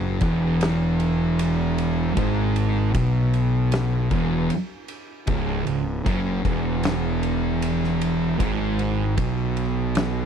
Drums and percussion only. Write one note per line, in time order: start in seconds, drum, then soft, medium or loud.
0.21 kick loud
0.21 ride medium
0.61 snare loud
0.61 ride medium
1.00 ride medium
1.39 ride medium
1.78 ride medium
2.17 kick loud
2.17 ride medium
2.56 ride medium
2.95 kick loud
2.95 ride medium
3.34 ride medium
3.72 snare loud
3.72 ride medium
4.11 kick loud
4.11 ride medium
4.50 ride medium
4.88 ride medium
5.27 kick loud
5.27 ride medium
5.67 ride medium
6.06 kick loud
6.06 ride medium
6.45 kick loud
6.45 ride medium
6.83 snare loud
6.83 ride medium
7.23 ride medium
7.62 ride medium
7.84 snare soft
8.01 ride medium
8.40 kick medium
8.40 ride medium
8.79 ride medium
9.18 kick loud
9.18 ride loud
9.57 ride medium
9.95 snare loud
9.95 ride medium